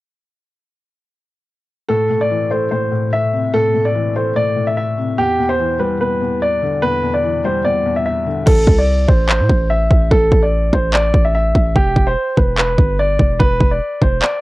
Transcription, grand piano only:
1.89 2.18 A4 loud
2.21 2.49 D5 medium
2.51 2.68 C5 medium
2.71 3.10 C5 medium
3.13 3.51 E5 medium
3.54 3.83 A4 loud
3.85 4.13 D5 medium
4.16 4.33 C5 medium
4.36 4.66 D5 medium
4.67 4.75 E5 medium
4.77 5.16 E5 medium
5.18 5.48 G4 loud
5.49 5.78 C5 medium
5.79 5.97 B4 medium
6.01 6.39 B4 medium
6.42 6.80 D5 medium
6.82 7.12 B4 loud
7.14 7.42 D5 medium
7.45 7.62 C5 medium
7.65 7.94 D5 medium
7.96 8.04 E5 medium
8.06 8.44 E5 medium
8.46 8.76 A4 loud
8.79 9.07 D5 medium
9.08 9.25 C5 medium
9.28 9.67 C5 medium
9.70 10.09 E5 medium
10.11 10.41 A4 loud
10.43 10.71 D5 medium
10.73 10.90 C5 medium
10.94 11.23 D5 medium
11.25 11.33 E5 medium
11.35 11.73 E5 medium
11.76 12.05 G4 loud
12.07 12.35 C5 medium
12.37 12.54 B4 medium
12.58 12.97 B4 medium
12.99 13.38 D5 medium
13.39 13.69 B4 loud
13.71 14.00 D5 medium
14.02 14.19 C5 medium
14.22 14.41 D5 medium

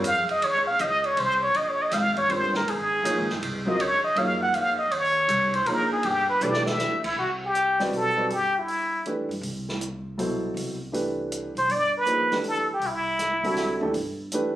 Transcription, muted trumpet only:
0.07 0.29 F5 loud
0.31 0.46 D#5 loud
0.44 0.66 C#5 medium
0.67 0.82 F5 loud
0.81 1.07 D#5 medium
1.06 1.21 C#5 loud
1.19 1.42 C5 loud
1.43 1.58 C#5 loud
1.57 1.70 D#5 loud
1.69 1.83 C#5 medium
1.82 1.95 D#5 medium
1.93 2.17 F5 loud
2.17 2.32 C#5 medium
2.31 2.55 C5 medium
2.56 2.71 A#4 medium
2.69 3.30 G#4 medium
3.68 3.82 D#5 medium
3.81 4.04 C#5 loud
4.04 4.19 D#5 loud
4.18 4.42 F5 medium
4.43 4.56 F#5 loud
4.55 4.78 F5 loud
4.79 4.93 D#5 medium
4.92 5.57 C#5 medium
5.55 5.68 C5 loud
5.67 5.92 A#4 medium
5.92 6.07 G#4 loud
6.06 6.29 G4 medium
6.29 6.44 B4 medium
6.43 6.68 D5 medium
6.67 7.04 E5 loud
7.05 7.16 E4 medium
7.19 7.29 F#4 medium
7.45 7.90 G4 medium
7.97 8.34 A4 loud
8.33 8.60 G4 loud
8.59 9.07 E4 medium
11.58 11.73 C5 medium
11.71 11.94 D5 loud
11.97 12.42 B4 medium
12.47 12.68 A4 medium
12.74 12.88 G4 medium
12.87 13.84 E4 medium

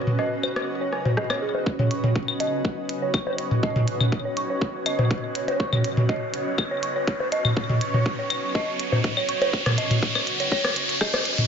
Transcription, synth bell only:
0.19 0.27 D#5 loud
0.81 0.89 C#5 medium
0.93 0.98 G#5 medium
1.06 1.09 C#5 medium
1.17 1.26 D#5 medium
1.30 1.33 C#5 medium
1.42 1.48 G#4 medium
1.79 1.87 C#5 medium
1.91 1.94 C#6 medium
2.04 2.07 C#5 medium
2.40 2.49 D#5 loud
3.02 3.10 C#5 medium
3.14 3.17 C#6 medium
3.27 3.30 C#5 medium
3.63 3.72 D#5 loud
4.25 4.33 C#5 medium
4.37 4.40 C#6 medium
4.50 4.53 C#5 medium
4.86 4.95 D#5 loud
5.48 5.56 C#5 medium
5.60 5.63 C#6 medium
5.73 5.76 C#5 medium
6.09 6.18 D#5 loud
6.71 6.79 C#5 medium
6.83 6.86 C#6 medium
6.96 6.99 C#5 medium
7.32 7.41 D#5 loud
7.94 8.02 C#5 medium
8.06 8.09 C#6 medium
8.19 8.22 C#5 medium
8.55 8.64 D#5 loud
9.17 9.25 C#5 medium
9.29 9.32 C#6 medium
9.42 9.45 C#5 medium
9.78 9.87 D#5 medium
10.40 10.48 C#5 medium
10.52 10.60 C#5 loud
10.65 10.68 C#5 medium
11.01 11.09 D#5 loud

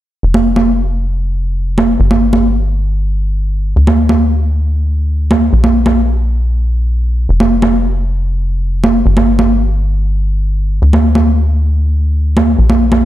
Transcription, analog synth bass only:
0.23 1.98 F1 medium
2.00 3.74 G1 medium
3.76 5.51 D2 medium
5.53 7.27 A#1 medium
7.29 9.03 F1 medium
9.06 10.80 G1 medium
10.82 12.56 D2 medium
12.59 13.05 A#1 medium

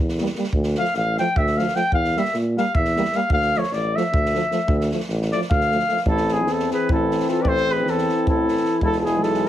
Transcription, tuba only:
0.00 0.29 E2 medium
0.54 0.77 D2 medium
0.95 1.18 A1 medium
1.36 1.67 D2 medium
1.93 2.16 E2 medium
2.34 2.57 A#2 medium
2.75 3.06 E2 medium
3.30 3.53 D2 medium
3.71 3.95 A1 medium
4.12 4.43 D2 medium
4.68 4.91 D2 medium
5.09 5.32 A1 medium
5.50 5.81 D2 medium
6.06 6.49 A1 loud
6.47 6.70 E2 medium
6.90 7.20 A1 medium
7.44 7.87 A1 medium
7.86 8.08 E2 medium
8.27 8.57 A1 medium
8.81 9.25 E1 loud
9.23 9.46 B1 medium

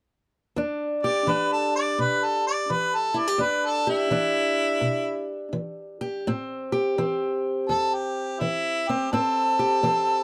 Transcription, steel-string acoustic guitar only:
0.56 1.22 E2 medium
0.56 1.28 D4 medium
1.04 3.14 G4 medium
1.27 1.93 E3 medium
1.27 3.38 D4 medium
1.98 2.64 B2 medium
2.70 3.36 E3 medium
3.14 3.28 E4 medium
3.28 3.40 G4 medium
3.38 4.05 E2 medium
3.38 4.10 D4 medium
3.87 6.01 G4 medium
4.11 4.77 E3 medium
4.11 6.22 D4 medium
4.81 5.48 B2 medium
5.53 6.19 E3 medium
6.01 6.30 G4 medium
6.27 6.92 A2 medium
6.27 6.98 C4 medium
6.72 9.16 G4 medium
6.98 7.63 E3 medium
6.98 8.86 C4 medium
7.69 8.34 E2 medium
8.41 9.06 E3 medium
8.89 9.09 C4 medium
9.13 9.77 A2 medium
9.13 9.83 C4 medium
9.59 10.23 G4 medium
9.83 10.23 E3 medium
9.83 10.23 C4 medium

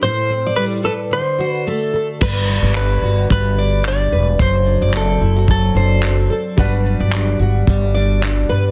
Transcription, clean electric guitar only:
0.03 0.56 C5 medium
0.56 0.64 B4 medium
0.85 0.92 A4 medium
1.13 1.50 C5 medium
1.50 1.64 B4 medium
2.23 2.76 B4 medium
2.77 3.27 B4 medium
3.32 3.87 B4 medium
3.88 4.41 D5 medium
4.42 4.97 C5 medium
4.97 5.50 A4 medium
5.51 6.28 A4 medium

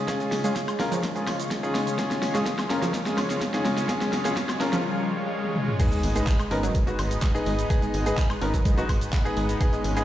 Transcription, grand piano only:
0.08 0.41 C#4 medium
0.08 0.41 F4 medium
0.08 0.41 G#4 loud
0.44 0.56 C#4 medium
0.44 0.56 F4 medium
0.44 0.56 G#4 medium
0.80 0.92 C#4 medium
0.80 0.92 F4 medium
0.80 0.92 A#4 medium
1.16 1.27 C#4 medium
1.16 1.27 F4 medium
1.16 1.27 G#4 medium
1.63 1.96 C#4 medium
1.63 1.96 F4 medium
1.63 1.96 G#4 loud
1.99 2.32 C#4 loud
1.99 2.32 F4 medium
1.99 2.32 G#4 loud
2.35 2.46 C#4 medium
2.35 2.46 F4 medium
2.35 2.46 G#4 medium
2.70 2.82 C#4 medium
2.70 2.82 F4 medium
2.70 2.82 A#4 medium
3.06 3.17 C#4 medium
3.06 3.17 F4 medium
3.06 3.18 G#4 medium
3.54 3.86 C#4 medium
3.54 3.86 F4 medium
3.54 3.86 G#4 loud
3.89 4.22 C#4 loud
3.89 4.22 F4 medium
3.89 4.22 G#4 loud
4.25 4.37 C#4 medium
4.25 4.37 F4 medium
4.25 4.37 G#4 medium
4.60 4.73 C#4 medium
4.60 4.73 F4 medium
4.60 4.73 A#4 medium
5.80 6.13 B3 medium
5.80 6.13 D#4 medium
5.80 6.13 G#4 loud
6.16 6.27 B3 medium
6.16 6.27 D#4 medium
6.16 6.27 G#4 medium
6.51 6.63 B3 medium
6.51 6.63 D#4 medium
6.51 6.63 A#4 medium
6.87 6.98 B3 medium
6.87 6.98 D#4 medium
6.87 6.98 F#4 medium
7.35 7.67 B3 medium
7.35 7.67 D#4 medium
7.35 7.67 G#4 loud
7.70 8.03 B3 loud
7.70 8.03 D#4 medium
7.70 8.03 G#4 loud
8.06 8.18 B3 medium
8.06 8.18 D#4 medium
8.06 8.18 G#4 medium
8.42 8.54 B3 medium
8.42 8.54 D#4 medium
8.42 8.54 A#4 medium
8.78 8.89 B3 medium
8.78 8.89 D#4 medium
8.78 8.89 F#4 medium
9.25 9.58 B3 medium
9.25 9.58 D#4 medium
9.25 9.58 G#4 loud
9.61 9.94 B3 loud
9.61 9.94 D#4 medium
9.61 9.94 G#4 loud
9.97 10.04 B3 medium
9.97 10.04 D#4 medium
9.97 10.04 G#4 medium

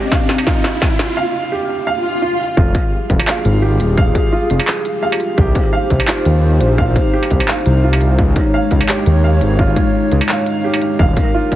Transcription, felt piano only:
0.12 0.45 F5 medium
0.46 0.63 F4 medium
1.17 1.50 F5 medium
1.52 1.69 G4 medium
1.87 2.20 F5 medium
2.22 2.39 F4 medium
2.57 2.74 F4 medium
3.27 3.61 F5 medium
3.62 3.79 G4 medium
3.97 4.31 F5 medium
4.32 4.49 F4 medium
5.03 5.36 F5 medium
5.38 5.54 G4 medium
5.73 6.06 F5 medium
6.08 6.25 F4 medium
6.78 7.12 F5 medium
7.13 7.30 G4 medium
7.49 7.82 F5 medium
7.84 8.00 F4 medium
8.54 8.87 F5 medium
8.89 9.06 G4 medium
9.24 9.57 F5 medium
9.59 9.76 F4 medium
10.29 10.63 F5 medium
10.64 10.81 G4 medium
10.99 11.33 F5 medium
11.34 11.51 F4 medium

